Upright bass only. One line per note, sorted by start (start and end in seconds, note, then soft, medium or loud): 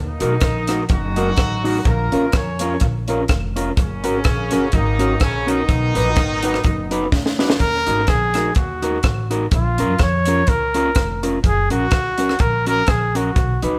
0.00 0.16 D#2 medium
0.21 0.38 B1 medium
0.42 0.82 A#1 medium
0.90 1.30 F#1 loud
1.38 1.78 A1 medium
1.85 2.08 A#1 loud
2.13 2.35 C#2 medium
2.33 2.74 F2 medium
2.81 3.22 A#1 medium
3.29 3.70 F1 medium
3.77 4.05 F#1 medium
4.05 4.22 G#1 loud
4.25 4.48 A#1 medium
4.53 4.70 F#1 medium
4.73 5.14 G#1 loud
5.21 5.62 A#1 medium
5.69 5.92 B1 loud
5.96 6.14 A#1 loud
6.17 6.57 G#1 medium
6.65 7.05 F#1 medium
7.12 7.53 D2 medium
7.60 7.83 D#2 loud
7.87 8.05 G#1 medium
8.08 8.49 A#1 medium
8.56 8.97 D#2 loud
9.04 9.45 A1 medium
9.52 9.80 A#1 loud
9.79 9.97 F#2 medium
10.00 10.41 F2 medium
10.48 10.89 C#2 loud
10.96 11.37 F1 medium
11.44 11.67 F#1 loud
11.71 11.89 A#1 medium
11.92 12.33 C#2 medium
12.40 12.81 A#1 medium
12.88 13.29 A#1 medium
13.36 13.59 B1 loud
13.63 13.79 C#2 loud